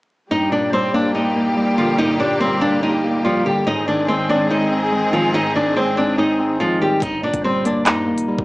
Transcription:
0.31 1.36 G2 medium
0.31 3.63 A#2 medium
0.31 3.63 G3 medium
0.31 3.63 A#3 medium
0.31 0.50 D#4 loud
0.31 3.63 G4 medium
0.31 0.50 D#5 medium
0.52 1.57 A#2 medium
0.52 0.71 D4 medium
0.52 0.71 D5 medium
0.73 1.56 G3 medium
0.73 0.92 C4 medium
0.73 0.92 C5 medium
0.94 1.35 A#3 medium
0.94 1.13 D4 medium
0.94 1.14 D5 medium
1.15 1.74 D#4 medium
1.15 1.74 D#5 medium
1.36 2.41 A#3 medium
1.57 2.40 G3 medium
1.78 2.83 D3 medium
1.78 1.97 F3 medium
1.78 1.97 F4 medium
1.98 3.04 G2 medium
1.98 2.18 D#4 loud
1.98 2.18 D#5 medium
2.20 3.25 A#2 medium
2.20 2.39 D4 medium
2.20 2.39 D5 medium
2.40 3.23 G3 medium
2.40 2.60 C4 medium
2.40 2.60 C5 medium
2.61 3.03 A#3 medium
2.61 2.80 D4 medium
2.61 2.81 D5 medium
2.83 3.22 D#4 medium
2.83 3.23 D#5 medium
3.04 3.67 A#3 medium
3.25 3.44 F3 medium
3.25 3.67 G3 medium
3.25 3.44 F4 medium
3.46 3.67 D3 medium
3.46 3.65 G3 medium
3.46 3.65 G4 medium
3.66 4.71 G#2 medium
3.66 6.99 D#3 medium
3.66 6.99 G#3 medium
3.66 6.99 C4 medium
3.66 3.86 D#4 loud
3.66 6.99 G#4 medium
3.66 3.86 D#5 medium
3.88 4.92 D#3 medium
3.88 4.07 D4 medium
3.88 4.07 D5 medium
4.08 4.91 G#3 medium
4.08 4.27 C4 medium
4.08 4.28 C5 medium
4.29 4.70 C4 medium
4.29 4.48 D4 medium
4.29 4.49 D5 medium
4.50 5.55 D#4 loud
4.50 5.10 D#4 medium
4.50 5.10 D#5 medium
4.71 5.76 C4 medium
4.92 5.75 G#3 medium
5.13 5.54 D#3 medium
5.13 5.33 F3 medium
5.13 5.32 F4 medium
5.34 6.39 G#2 medium
5.34 5.53 D#4 loud
5.34 5.54 D#5 medium
5.55 6.60 D#3 medium
5.55 5.75 D4 medium
5.55 5.75 D5 medium
5.76 6.59 G#3 medium
5.76 5.95 C4 medium
5.76 5.96 C5 medium
5.97 6.38 C4 medium
5.97 6.16 D4 medium
5.97 6.17 D5 medium
6.18 6.58 D#4 medium
6.18 7.02 D#4 loud
6.18 6.58 D#5 medium
6.39 7.02 C4 medium
6.60 6.80 F3 medium
6.60 7.02 G#3 medium
6.60 6.79 F4 medium
6.81 7.02 D#3 medium
6.81 7.01 G3 medium
6.81 7.00 G4 medium
7.02 7.32 G1 loud
7.02 8.07 G2 medium
7.02 7.21 D#4 loud
7.02 7.22 D#5 medium
7.02 kick loud
7.02 closed hi-hat medium
7.23 8.28 A#2 medium
7.23 7.42 D4 medium
7.23 7.43 D5 medium
7.34 7.88 G1 loud
7.34 kick medium
7.34 closed hi-hat medium
7.44 8.27 G3 medium
7.44 7.63 C4 medium
7.44 7.64 C5 medium
7.65 8.06 A#3 medium
7.65 7.84 D4 medium
7.65 7.85 D5 medium
7.65 closed hi-hat medium
7.86 8.14 G2 loud
7.86 8.45 D#4 medium
7.86 8.45 D#5 medium
7.86 clap loud
7.86 closed hi-hat medium
8.07 8.45 A#3 medium
8.12 8.37 G1 loud
8.18 closed hi-hat medium
8.28 8.45 G3 medium
8.38 8.45 G1 loud
8.38 kick medium

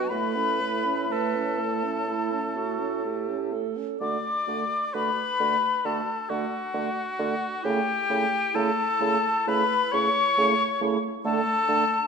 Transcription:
0.00 0.10 F#4 medium
0.00 0.12 F#5 medium
0.10 3.64 A2 medium
0.10 0.37 A3 medium
0.10 0.38 E4 medium
0.10 1.13 B4 medium
0.10 1.13 B5 loud
0.36 0.62 C#4 soft
0.36 0.63 A4 soft
0.60 0.87 A3 soft
0.60 0.88 E4 soft
0.85 1.10 C#4 soft
0.85 1.10 A4 medium
1.10 1.37 A3 medium
1.10 3.53 A4 medium
1.10 1.61 B4 medium
1.10 3.53 A5 medium
1.36 1.61 C#4 soft
1.59 1.85 A3 medium
1.59 2.10 A4 medium
1.84 2.07 C#4 soft
2.08 2.33 A3 soft
2.08 2.42 E4 medium
2.31 2.58 C#4 soft
2.56 2.81 A3 soft
2.56 3.06 F#4 medium
2.79 3.04 C#4 soft
3.04 3.30 A3 soft
3.04 3.55 G4 medium
3.28 3.54 C#4 soft
3.53 3.78 A3 soft
3.53 4.01 A4 medium
3.77 4.00 C#4 soft
4.00 4.17 D3 medium
4.00 4.16 A3 medium
4.00 4.17 F#4 soft
4.00 4.95 D5 medium
4.00 4.90 D6 medium
4.47 4.64 D3 soft
4.47 4.63 A3 soft
4.47 4.63 F#4 soft
4.94 5.10 D3 medium
4.94 5.10 A3 soft
4.94 5.10 F#4 soft
4.94 5.87 B4 medium
4.94 5.87 B5 loud
5.40 5.56 D3 medium
5.40 5.56 A3 medium
5.40 5.56 F#4 soft
5.85 6.01 D3 medium
5.85 6.01 A3 soft
5.85 6.02 F#4 soft
5.85 6.31 A4 medium
5.85 6.29 A5 medium
6.29 6.45 D3 medium
6.29 6.46 A3 soft
6.29 6.45 F#4 medium
6.29 7.65 F#4 medium
6.29 7.62 F#5 medium
6.74 6.90 D3 medium
6.74 6.90 A3 soft
6.74 6.90 F#4 medium
7.19 7.35 D3 medium
7.19 7.35 A3 medium
7.19 7.35 F#4 medium
7.63 7.81 C#3 medium
7.63 7.81 A3 medium
7.63 7.79 E4 medium
7.63 8.57 G4 medium
7.63 8.57 G5 loud
8.09 8.26 C#3 medium
8.09 8.26 A3 medium
8.09 8.25 E4 medium
8.54 8.71 C#3 medium
8.54 8.71 A3 medium
8.54 8.70 E4 medium
8.54 9.47 A4 medium
8.54 9.51 A5 loud
9.00 9.17 C#3 medium
9.00 9.16 A3 medium
9.00 9.16 E4 medium
9.46 9.63 C#3 medium
9.46 9.63 A3 medium
9.46 9.62 E4 medium
9.46 9.93 B4 medium
9.46 9.96 B5 loud
9.92 10.09 C#3 medium
9.92 10.09 A3 medium
9.92 10.09 E4 medium
9.92 10.99 C#5 medium
9.92 11.00 C#6 loud
10.38 10.54 C#3 medium
10.38 10.54 A3 medium
10.38 10.55 E4 medium
10.81 10.98 C#3 medium
10.81 10.97 A3 medium
10.81 10.98 E4 medium
11.25 11.41 D3 medium
11.25 11.41 A3 medium
11.25 11.42 D4 medium
11.25 12.07 A4 loud
11.25 12.07 A5 loud
11.68 11.84 D3 medium
11.68 11.85 A3 medium
11.68 11.85 D4 medium

